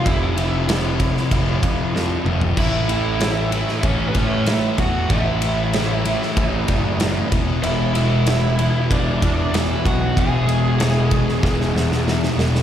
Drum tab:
CC |----------------|x---------------|----------------|----------------|
RD |x-x-x-x-x-x-----|--x-x-x-x-x-x-x-|x-x-x-x-x-x-x-x-|x-x-x-x-x-x-x-x-|
SD |----o--o----o---|----o--o----o---|----o--o----o---|----o-------o---|
T2 |--------------o-|----------------|----------------|----------------|
FT |---------------o|----------------|----------------|----------------|
BD |o-----o-o-o-----|o-------o-o---o-|o-------o-o---o-|--------o-o---o-|

CC |----------------|
RD |x-x-x-x---------|
SD |----o--ooooooooo|
T2 |----------------|
FT |----------------|
BD |o-----o-o-------|